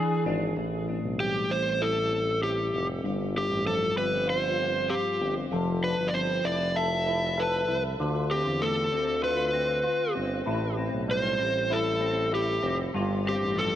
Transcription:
Already playing: clean electric guitar E3 D4 G#4, electric slide guitar G#4
0.26 tuba G#1, clean electric guitar D4
0.56 tuba A1, clean electric guitar A2 E4
0.88 clean electric guitar C4
1.03 tuba B1
1.19 clean electric guitar G3, electric slide guitar G4
1.49 tuba A1, clean electric guitar C4, electric slide guitar C5
1.81 clean electric guitar E4, electric slide guitar A4
2.12 clean electric guitar C4
2.43 clean electric guitar E4, electric slide guitar G4
2.73 tuba F1, clean electric guitar C4
3.03 tuba G1, clean electric guitar G2 F4
3.34 clean electric guitar C4, electric slide guitar G4
3.50 tuba A1
3.65 clean electric guitar F3, electric slide guitar A4
3.96 tuba G1, clean electric guitar C4, electric slide guitar B4
4.27 clean electric guitar F4, electric slide guitar C5
4.58 clean electric guitar C4
4.89 clean electric guitar F4, electric slide guitar G4
5.20 tuba G1, clean electric guitar C4
5.51 tuba F1, clean electric guitar F3 A4
5.83 clean electric guitar D4, electric slide guitar B4
5.98 tuba G1, clean electric guitar E4
6.08 electric slide guitar D5
6.14 clean electric guitar C4, electric slide guitar C5
6.44 tuba F1, clean electric guitar E4, electric slide guitar D5
6.76 clean electric guitar A4, electric slide guitar E5
7.07 clean electric guitar E4
7.37 clean electric guitar A4, electric slide guitar B4
7.68 tuba C2, clean electric guitar E4
7.99 tuba D2, clean electric guitar D3 F4
8.31 clean electric guitar C4, electric slide guitar G4
8.46 tuba E2
8.61 clean electric guitar A3, electric slide guitar A4
8.92 tuba D2, clean electric guitar C4
9.23 clean electric guitar F4, electric slide guitar B4
9.53 clean electric guitar C4
9.84 clean electric guitar F4
10.15 tuba G1, clean electric guitar C4
10.46 tuba A1, clean electric guitar A2 E4
10.77 clean electric guitar C4
10.93 tuba B1
11.08 clean electric guitar G3, electric slide guitar C5
11.39 tuba A1, clean electric guitar C4
11.70 clean electric guitar E4, electric slide guitar A4
12.01 clean electric guitar C4
12.32 clean electric guitar E4, electric slide guitar G4
12.63 tuba F1, clean electric guitar C4
12.94 tuba G1, clean electric guitar G2 F4
13.25 clean electric guitar C4, electric slide guitar G4
13.41 tuba A1
13.56 clean electric guitar F3, electric slide guitar A4

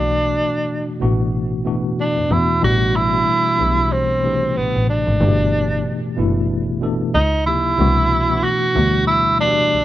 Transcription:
Already playing: double bass B1, tine electric piano B2 E3 A3 D4 F#4, tenor saxophone D4
1.00 double bass A1, tine electric piano B2 E3 A3 D4 F#4
1.65 tine electric piano B2 E3 A3 D4 F#4
2.00 tenor saxophone D4
2.17 double bass E2
2.29 double bass E2, tine electric piano B2 E3 A3 D4 F#4, tenor saxophone E4
2.61 double bass A1, tine electric piano B2 E3 G3 A3 D4, tenor saxophone F#4
2.96 tenor saxophone E4
3.12 tine electric piano B2 E3 A3 D4 F#4
3.58 double bass B1, tine electric piano B2 E3 A3 D4 G4
3.92 tenor saxophone C4
4.23 tine electric piano C3 E3 A3 D4 G4
4.56 double bass A1, tenor saxophone B3
4.75 double bass A1
4.89 tenor saxophone D4
5.07 double bass G#1
5.20 double bass G1, tine electric piano A2 E3 A3 D4 G4
5.27 tine electric piano B2
6.16 double bass F#1, tine electric piano B2 E3 A3 D4 E4
6.81 tine electric piano B2 E3 A3 D4 A4
7.14 double bass C#2, tenor saxophone D#4
7.46 tine electric piano C3 F3 A#3 D#4 G4, tenor saxophone E4
7.78 double bass C2, tine electric piano B2 E3 A3 D4 F#4
8.29 tine electric piano B2 E3 A3 D4 F#4
8.44 tenor saxophone F#4
8.74 double bass D2, tine electric piano B2 E3 G3 A3 D4
9.07 tenor saxophone E4
9.38 tine electric piano B2 E3 A3 D4 F#4, tenor saxophone D4
9.47 tine electric piano G4
9.73 double bass C2

